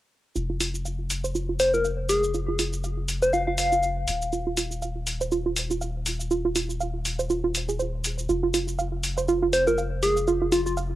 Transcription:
0.36 4.05 F1 medium
0.36 0.45 F4 medium
0.36 cabasa soft
0.50 0.54 F4 medium
0.60 0.70 F4 medium
0.60 open hi-hat loud
0.60 cabasa medium
0.75 cabasa soft
0.85 0.94 F5 medium
0.85 cabasa soft
1.10 open hi-hat medium
1.10 cabasa medium
1.24 1.31 C5 loud
1.24 cabasa soft
1.35 1.44 F4 medium
1.35 cabasa soft
1.49 1.53 F4 medium
1.60 1.71 C5 medium
1.60 open hi-hat loud
1.60 cabasa medium
1.74 1.81 F4 medium
1.74 1.85 A#4 medium
1.74 cabasa soft
1.85 1.98 F5 medium
1.85 cabasa soft
2.09 2.24 G#4 medium
2.09 open hi-hat medium
2.09 cabasa medium
2.23 cabasa soft
2.34 2.43 F4 medium
2.34 cabasa soft
2.48 2.52 F4 medium
2.59 2.68 F4 medium
2.59 open hi-hat loud
2.59 cabasa medium
2.73 cabasa soft
2.84 2.93 F5 medium
2.84 cabasa soft
3.08 open hi-hat medium
3.08 cabasa medium
3.22 3.31 C5 medium
3.22 3.30 C5 loud
3.22 cabasa soft
3.33 3.42 F4 medium
3.33 3.42 F5 medium
3.33 cabasa soft
3.47 3.52 F4 medium
3.47 3.54 F5 medium
3.58 3.97 F5 loud
3.58 open hi-hat loud
3.58 cabasa medium
3.72 3.79 F4 medium
3.72 cabasa soft
3.83 3.96 F5 medium
3.83 cabasa soft
4.08 8.27 D#1 medium
4.08 open hi-hat medium
4.08 cabasa medium
4.22 cabasa soft
4.33 4.42 F4 medium
4.33 cabasa soft
4.47 4.51 F4 medium
4.57 4.66 F4 medium
4.57 open hi-hat loud
4.57 cabasa medium
4.72 cabasa soft
4.82 4.91 F5 medium
4.82 cabasa soft
5.07 open hi-hat medium
5.07 cabasa medium
5.21 5.28 C5 loud
5.21 cabasa soft
5.32 5.41 F4 medium
5.32 cabasa soft
5.46 5.50 F4 medium
5.56 open hi-hat loud
5.56 cabasa medium
5.71 5.78 F4 medium
5.71 cabasa soft
5.81 5.95 F5 medium
5.81 cabasa soft
6.06 open hi-hat medium
6.06 cabasa medium
6.20 cabasa soft
6.31 6.40 F4 medium
6.31 cabasa soft
6.45 6.49 F4 medium
6.56 6.65 F4 medium
6.56 open hi-hat loud
6.56 cabasa medium
6.70 cabasa soft
6.80 6.90 F5 medium
6.80 cabasa soft
7.05 open hi-hat medium
7.05 cabasa medium
7.19 7.26 C5 loud
7.19 cabasa soft
7.30 7.39 F4 medium
7.30 cabasa soft
7.44 7.48 F4 medium
7.55 open hi-hat loud
7.55 cabasa medium
7.69 7.79 G#4 medium
7.69 cabasa soft
7.79 7.89 C5 medium
7.79 cabasa soft
8.04 open hi-hat medium
8.04 cabasa medium
8.19 cabasa soft
8.29 10.95 F1 medium
8.29 8.38 F4 medium
8.29 cabasa soft
8.43 8.47 F4 medium
8.54 8.63 F4 medium
8.54 open hi-hat loud
8.54 cabasa medium
8.68 cabasa soft
8.79 8.88 F5 medium
8.79 cabasa soft
9.03 open hi-hat medium
9.03 cabasa medium
9.18 9.25 C5 loud
9.18 cabasa soft
9.28 9.37 F4 medium
9.28 cabasa soft
9.42 9.47 F4 medium
9.53 9.64 C5 medium
9.53 open hi-hat loud
9.53 cabasa medium
9.67 9.74 F4 medium
9.67 9.78 A#4 medium
9.67 cabasa soft
9.78 9.91 F5 medium
9.78 cabasa soft
10.03 10.17 G#4 medium
10.03 open hi-hat medium
10.03 cabasa medium
10.17 cabasa soft
10.27 10.37 F4 medium
10.27 cabasa soft
10.42 10.46 F4 medium
10.52 10.61 F4 medium
10.52 open hi-hat loud
10.52 cabasa medium
10.66 10.73 F4 medium
10.66 cabasa soft
10.77 10.86 F5 medium
10.77 cabasa soft

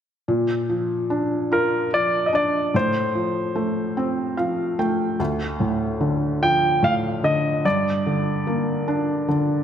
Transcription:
0.28 2.70 A#2 soft
0.69 1.91 F3 soft
1.10 2.31 D4 soft
1.52 2.71 F4 soft
1.52 1.90 A#4 medium
1.93 2.72 F3 soft
1.93 2.28 D5 medium
2.26 2.33 D#5 soft
2.33 2.73 D4 soft
2.33 2.76 D5 medium
2.74 5.16 A2 soft
2.74 4.35 C5 medium
3.15 4.36 F3 soft
3.55 4.78 A3 soft
3.97 5.16 C4 soft
4.37 5.17 F3 soft
4.37 4.76 F5 soft
4.79 5.19 A3 soft
4.79 5.17 G5 soft
5.20 7.61 D2 soft
5.60 6.81 A2 soft
6.01 7.22 D3 soft
6.42 7.61 F3 soft
6.42 6.85 G5 medium
6.83 7.62 A2 soft
6.83 6.93 F5 medium
7.24 7.64 D3 soft
7.24 7.67 D#5 medium
7.65 9.64 G2 soft
7.65 9.64 D5 medium
8.06 9.27 D3 soft
8.47 9.64 A#3 soft
8.88 9.64 D4 soft
9.28 9.64 D3 soft

